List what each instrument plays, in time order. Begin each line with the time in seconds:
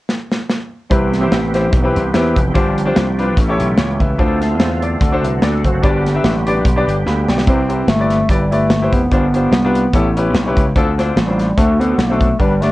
0.09 snare
0.32 snare
0.50 snare
0.90 slap bass C2, grand piano C3 C4 E4 G4 B4, tonewheel organ E3 B3 C4 G4, kick, closed hi-hat
1.13 snare, closed hi-hat
1.21 grand piano C4 E4 G4 C5
1.31 slap bass A1, snare, closed hi-hat
1.54 grand piano C4 E4 G4 C5, snare, closed hi-hat
1.72 slap bass B1, kick, closed hi-hat
1.83 grand piano C4 E4 G4 B4
1.96 slap bass C2, closed hi-hat
2.13 slap bass E2, grand piano C4 E4 G4 B4, snare, closed hi-hat
2.36 slap bass F1, kick, closed hi-hat
2.54 slap bass G1, grand piano G2 D4 F4 G4 C5, tonewheel organ F3 D4 G4, kick, closed hi-hat
2.78 closed hi-hat
2.85 grand piano D4 F4 G4 C5
2.96 slap bass C2, snare, closed hi-hat
3.18 grand piano D4 F4 G4 B4, closed hi-hat
3.36 slap bass A1, grand piano A2, tonewheel organ E3 A3 C#4 G4, kick, closed hi-hat
3.48 grand piano E4 G4 A4 C#5
3.60 slap bass B1, closed hi-hat
3.77 slap bass C#2, grand piano G4 C#5, snare, closed hi-hat
4.00 slap bass C#2, grand piano B4 E5, kick, closed hi-hat
4.19 slap bass D2, grand piano D3 D4 F4 A4 C5, tonewheel organ D3 C4 F4, kick, closed hi-hat
4.42 grand piano E5 A5, snare, closed hi-hat
4.59 slap bass E2, grand piano C5 F5, snare, closed hi-hat
4.82 grand piano A4 D5, closed hi-hat
5.01 slap bass D2, grand piano D3, tonewheel organ A3 F#4, kick, closed hi-hat
5.12 grand piano D4 F#4 A4 C5
5.23 slap bass C2, grand piano B4 E5, closed hi-hat
5.42 slap bass D2, grand piano A4 D5, snare, closed hi-hat
5.64 slap bass F#1, grand piano F#4 C5, kick, closed hi-hat
5.83 slap bass G1, grand piano G2 D4 G4 B4 D5, tonewheel organ D3 G3 B3 G4, kick, closed hi-hat
6.06 snare, closed hi-hat
6.15 grand piano D4 G4 B4 E5
6.24 slap bass A1, snare, closed hi-hat
6.46 grand piano D4 G4 B4 D5, closed hi-hat
6.65 slap bass B1, kick, closed hi-hat
6.76 grand piano D4 G4 B4 D5
6.87 slap bass G1, closed hi-hat
7.06 slap bass D2, grand piano F5 B5, snare
7.28 slap bass B1, grand piano D5 G5, snare
7.38 snare
7.47 slap bass C2, grand piano C3 E4 G4 B4 C5, bass clarinet C4, kick, closed hi-hat
7.69 grand piano E4 G4 B4 C5, closed hi-hat
7.87 slap bass G1, bass clarinet A3, snare, closed hi-hat
7.99 grand piano E4 G4 B4 D5
8.11 snare, closed hi-hat
8.29 slap bass G1, bass clarinet G3, grand piano E4 G4 B4 D5, kick, closed hi-hat
8.51 bass clarinet A3, grand piano E4 G4 B4 D5, closed hi-hat
8.70 slap bass G1, snare, closed hi-hat
8.82 grand piano E4 G4 B4 C5
8.93 slap bass F1, bass clarinet B3, kick, closed hi-hat
9.11 slap bass G1, grand piano G2 D4 F4 G4 C5, kick, closed hi-hat
9.34 grand piano D4 F4 G4 C5, closed hi-hat
9.51 slap bass C2, snare, closed hi-hat
9.64 grand piano D4 F4 G4 B4
9.75 closed hi-hat
9.93 slap bass A1, grand piano A2 C#4 E4 G4 A4, kick, closed hi-hat
10.17 grand piano C#4 E4 G4 B4, closed hi-hat
10.34 slap bass B1, snare, closed hi-hat
10.46 grand piano C#4 E4 G4 B4
10.57 slap bass C#2, kick, closed hi-hat
10.76 slap bass D2, grand piano D3 C4 D4 F4 A4, kick, closed hi-hat
10.98 grand piano C4 D4 F4 C5, snare, closed hi-hat
11.16 slap bass A1, bass clarinet G3, snare, closed hi-hat
11.28 grand piano C4 D4 F4 C5
11.39 snare, closed hi-hat
11.57 slap bass D2, grand piano D3 C4 D4 F#4 A4, bass clarinet A3, kick, closed hi-hat
11.79 bass clarinet B3, grand piano C4 D4 F#4 A4, closed hi-hat
11.98 slap bass B1, bass clarinet A3, snare, closed hi-hat
12.10 grand piano C4 D4 F#4 A4
12.21 kick, closed hi-hat
12.39 slap bass G1, grand piano G2 B3 D4 G4 B4, bass clarinet G3, kick, closed hi-hat
12.61 bass clarinet A3, grand piano B3 D4 G4 D5, snare, closed hi-hat